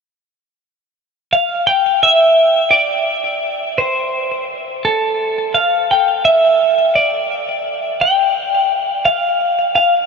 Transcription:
clean electric guitar
1.33 F5
1.67 G5
2.03 E5
2.71 D5
3.78 C5
4.85 A4
5.54 F5
5.91 G5
6.25 E5
6.95 D5
8.01 G5
9.05 F5
9.76 F5

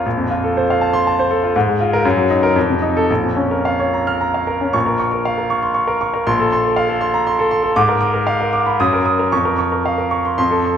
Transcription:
grand piano
0.06 A#1
0.17 F2
0.31 F4
0.44 A4
0.57 C5
0.70 F5
0.81 A5
0.93 C6
1.07 A5
1.19 C5
1.31 A4
1.44 F4
1.56 G#2
1.69 G#3
1.81 F4
1.93 A#4
2.05 F#2
2.17 F#3
2.30 D#4
2.43 A#4
2.56 F2
2.70 C3
2.82 D#4
2.97 A4
3.10 A#1
3.23 F2
3.37 C#4
3.51 A#4
3.65 F5
3.80 C#5
3.94 A#5
4.07 F6
4.21 A#5
4.34 F5
4.47 A#4
4.61 C#4
4.73 A#1 C#6
4.86 A#4
4.99 C#6
5.12 A#4
5.25 F5
5.38 A#4
5.50 C#6
5.63 C6
5.74 C#6
5.87 A#4
6.01 C#6
6.14 A#4
6.27 A#1 C6
6.40 A4
6.52 C6
6.65 A4
6.76 F5
6.89 A4
7.01 C6
7.14 A#5
7.27 C6
7.39 A4
7.51 C6
7.63 A4
7.76 G#2 D6
7.89 A#4
8.01 D6
8.14 A#4
8.27 F5
8.40 A#4
8.53 D6
8.66 B5
8.80 F#2 D#6
8.93 A#4
9.05 D#6
9.19 A#4
9.32 F2 C#6
9.45 A#4
9.58 C#6
9.72 A#4
9.86 F5
9.98 A#4
10.11 C#6
10.25 C6
10.38 F2 C6
10.51 A4
10.65 C6

